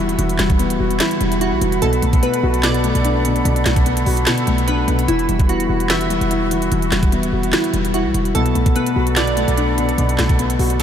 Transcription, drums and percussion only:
0.09 closed hi-hat soft
0.19 closed hi-hat medium
0.29 closed hi-hat medium
0.38 snare loud
0.38 clap medium
0.38 closed hi-hat medium
0.50 kick loud
0.50 closed hi-hat medium
0.59 closed hi-hat medium
0.70 closed hi-hat medium
0.91 closed hi-hat medium
0.99 snare loud
0.99 clap loud
0.99 closed hi-hat medium
1.11 closed hi-hat medium
1.21 closed hi-hat medium
1.32 closed hi-hat medium
1.41 closed hi-hat medium
1.61 closed hi-hat medium
1.72 closed hi-hat medium
1.82 closed hi-hat medium
1.93 closed hi-hat medium
2.02 closed hi-hat medium
2.13 kick loud
2.13 closed hi-hat medium
2.23 closed hi-hat medium
2.34 closed hi-hat medium
2.54 closed hi-hat medium
2.63 snare loud
2.63 clap loud
2.63 closed hi-hat medium
2.74 closed hi-hat medium
2.84 closed hi-hat medium
2.95 closed hi-hat medium
3.05 closed hi-hat medium
3.25 closed hi-hat medium
3.36 closed hi-hat medium
3.45 closed hi-hat medium
3.56 closed hi-hat medium
3.65 snare loud
3.65 clap medium
3.65 closed hi-hat medium
3.76 kick loud
3.76 closed hi-hat medium
3.86 closed hi-hat medium
3.97 closed hi-hat medium
4.06 open hi-hat medium
4.17 closed hi-hat medium
4.26 snare loud
4.26 clap loud
4.26 closed hi-hat medium
4.38 closed hi-hat medium
4.47 closed hi-hat medium
4.58 closed hi-hat medium
4.68 closed hi-hat medium
4.88 closed hi-hat medium
4.99 closed hi-hat medium
5.08 closed hi-hat medium
5.19 closed hi-hat medium
5.29 closed hi-hat medium
5.39 kick loud
5.39 closed hi-hat medium
5.49 closed hi-hat medium
5.60 closed hi-hat medium
5.80 closed hi-hat medium
5.89 snare loud
5.89 clap loud
5.89 closed hi-hat medium
6.01 closed hi-hat medium
6.10 closed hi-hat medium
6.21 closed hi-hat medium
6.31 closed hi-hat medium
6.51 closed hi-hat medium
6.62 closed hi-hat medium
6.72 closed hi-hat medium
6.82 closed hi-hat medium
6.91 snare loud
6.91 clap medium
6.91 closed hi-hat medium
7.03 kick loud
7.03 closed hi-hat medium
7.12 closed hi-hat medium
7.23 closed hi-hat medium
7.43 closed hi-hat medium
7.52 snare loud
7.52 clap loud
7.52 closed hi-hat medium
7.64 closed hi-hat medium
7.74 closed hi-hat medium
7.85 closed hi-hat medium
7.94 closed hi-hat medium
8.14 closed hi-hat medium
8.25 closed hi-hat medium
8.35 closed hi-hat medium
8.46 closed hi-hat medium
8.55 closed hi-hat medium
8.66 kick loud
8.66 closed hi-hat medium
8.76 closed hi-hat medium
8.86 closed hi-hat medium
9.07 closed hi-hat medium
9.16 snare loud
9.16 clap loud
9.16 closed hi-hat medium
9.27 closed hi-hat medium
9.37 closed hi-hat medium
9.48 closed hi-hat medium
9.57 closed hi-hat medium
9.78 closed hi-hat medium
9.89 closed hi-hat medium
9.98 closed hi-hat medium
10.09 closed hi-hat medium
10.18 snare medium
10.18 clap medium
10.18 closed hi-hat medium
10.29 kick loud
10.29 closed hi-hat medium
10.39 closed hi-hat medium
10.50 closed hi-hat medium
10.59 open hi-hat medium
10.70 closed hi-hat medium
10.80 snare medium
10.80 closed hi-hat medium

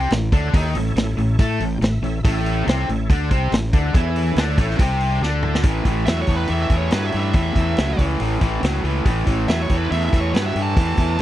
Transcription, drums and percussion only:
0.10 snare loud
0.10 open hi-hat medium
0.32 kick loud
0.32 open hi-hat medium
0.54 kick loud
0.54 open hi-hat medium
0.75 open hi-hat medium
0.96 snare loud
0.96 open hi-hat medium
1.18 open hi-hat medium
1.39 kick loud
1.39 open hi-hat medium
1.60 open hi-hat medium
1.82 snare loud
1.82 open hi-hat medium
2.04 open hi-hat medium
2.25 kick loud
2.25 open hi-hat medium
2.46 open hi-hat medium
2.68 snare loud
2.68 open hi-hat medium
2.89 open hi-hat medium
3.10 kick loud
3.10 open hi-hat medium
3.31 kick loud
3.31 open hi-hat medium
3.52 snare loud
3.52 open hi-hat medium
3.73 kick loud
3.73 open hi-hat medium
3.94 kick loud
3.94 open hi-hat medium
4.16 open hi-hat medium
4.36 snare loud
4.36 open hi-hat medium
4.58 kick medium
4.58 open hi-hat medium
4.70 snare soft
4.79 kick loud
4.79 open hi-hat medium
5.00 open hi-hat medium
5.23 snare medium
5.43 mid tom medium
5.55 snare medium
5.63 kick loud
5.63 open hi-hat medium
5.85 kick medium
5.85 open hi-hat soft
6.06 snare loud
6.06 open hi-hat medium
6.27 kick medium
6.27 open hi-hat medium
6.48 open hi-hat medium
6.70 kick medium
6.70 open hi-hat soft
6.91 snare loud
6.91 open hi-hat medium
7.12 open hi-hat medium
7.33 kick loud
7.33 open hi-hat medium
7.56 kick medium
7.56 open hi-hat medium
7.77 snare loud
7.77 open hi-hat medium
7.99 kick medium
7.99 open hi-hat medium
8.20 open hi-hat medium
8.41 kick medium
8.41 open hi-hat medium
8.63 snare loud
8.63 open hi-hat medium
8.85 open hi-hat medium
9.06 kick loud
9.06 open hi-hat medium
9.27 kick medium
9.27 open hi-hat medium
9.48 snare loud
9.48 open hi-hat medium
9.69 kick medium
9.69 open hi-hat soft
9.92 open hi-hat medium
10.13 kick medium
10.13 open hi-hat medium
10.34 snare loud
10.34 open hi-hat medium
10.56 open hi-hat medium
10.77 kick loud
10.77 open hi-hat medium
10.97 kick medium
10.97 open hi-hat medium
11.19 open hi-hat medium

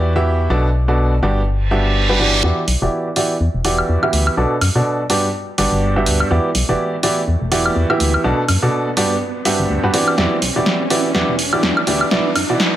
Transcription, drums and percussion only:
2.68 open hi-hat loud
3.16 open hi-hat loud
3.65 open hi-hat loud
3.79 high woodblock medium
4.03 high woodblock medium
4.13 open hi-hat loud
4.27 high woodblock medium
4.61 open hi-hat loud
4.61 high woodblock medium
5.10 open hi-hat loud
5.58 open hi-hat loud
6.06 open hi-hat loud
6.20 high woodblock medium
6.55 open hi-hat loud
7.03 open hi-hat loud
7.52 open hi-hat loud
7.66 high woodblock medium
7.90 high woodblock medium
8.00 open hi-hat loud
8.14 high woodblock medium
8.48 open hi-hat loud
8.48 high woodblock medium
8.97 open hi-hat loud
9.45 open hi-hat loud
9.94 open hi-hat loud
10.08 high woodblock medium
10.18 snare soft
10.42 open hi-hat loud
10.66 snare medium
10.90 open hi-hat loud
11.15 snare medium
11.39 open hi-hat loud
11.53 high woodblock medium
11.63 snare medium
11.77 high woodblock medium
11.87 open hi-hat loud
12.01 high woodblock medium
12.11 snare medium
12.36 open hi-hat loud
12.36 high woodblock medium
12.60 snare medium

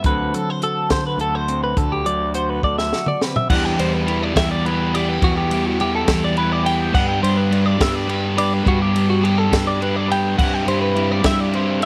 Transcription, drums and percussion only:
0.04 kick loud
0.04 closed hi-hat medium
0.34 closed hi-hat medium
0.62 closed hi-hat medium
0.90 kick medium
0.90 snare loud
0.90 closed hi-hat medium
1.19 closed hi-hat medium
1.48 closed hi-hat medium
1.77 kick loud
1.77 closed hi-hat medium
2.06 closed hi-hat medium
2.34 closed hi-hat medium
2.63 kick medium
2.79 snare medium
2.93 snare medium
3.06 mid tom medium
3.21 snare medium
3.36 floor tom medium
3.50 kick loud
3.50 crash loud
3.79 ride medium
4.08 ride medium
4.36 kick medium
4.36 snare loud
4.36 ride loud
4.66 ride medium
4.95 ride medium
5.22 kick loud
5.22 ride medium
5.51 ride medium
5.80 ride medium
6.08 kick medium
6.08 snare loud
6.08 ride loud
6.37 ride medium
6.66 ride medium
6.95 kick loud
6.95 crash medium
7.24 ride medium
7.52 ride medium
7.81 kick medium
7.81 snare loud
7.81 ride loud
8.09 ride medium
8.38 ride medium
8.66 kick loud
8.66 ride medium
8.96 ride medium
9.25 ride medium
9.53 kick medium
9.53 snare loud
9.53 ride loud
9.82 ride medium
10.11 ride medium
10.39 kick loud
10.39 crash medium
10.68 ride medium
10.96 ride medium
11.24 kick medium
11.24 snare loud
11.24 ride loud
11.53 ride medium
11.82 ride medium

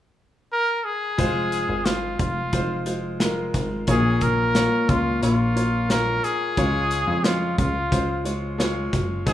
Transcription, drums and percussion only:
1.19 kick medium
1.19 closed hi-hat medium
1.52 closed hi-hat medium
1.86 snare medium
1.86 closed hi-hat medium
2.19 kick medium
2.19 closed hi-hat medium
2.53 kick medium
2.53 closed hi-hat medium
2.86 closed hi-hat medium
3.20 snare medium
3.20 closed hi-hat medium
3.54 kick medium
3.54 snare soft
3.54 closed hi-hat medium
3.87 kick medium
3.87 closed hi-hat medium
4.21 kick medium
4.21 closed hi-hat medium
4.55 snare medium
4.55 closed hi-hat medium
4.89 kick medium
4.89 closed hi-hat medium
5.23 closed hi-hat medium
5.57 closed hi-hat medium
5.90 snare loud
5.90 closed hi-hat medium
6.24 closed hi-hat medium
6.57 kick medium
6.57 closed hi-hat medium
6.91 closed hi-hat medium
7.24 snare medium
7.24 closed hi-hat medium
7.58 kick medium
7.58 closed hi-hat medium
7.92 kick medium
7.92 closed hi-hat medium
8.25 closed hi-hat medium
8.60 snare medium
8.60 closed hi-hat medium
8.93 kick medium
8.93 snare soft
8.93 closed hi-hat medium
9.27 kick medium
9.27 closed hi-hat medium

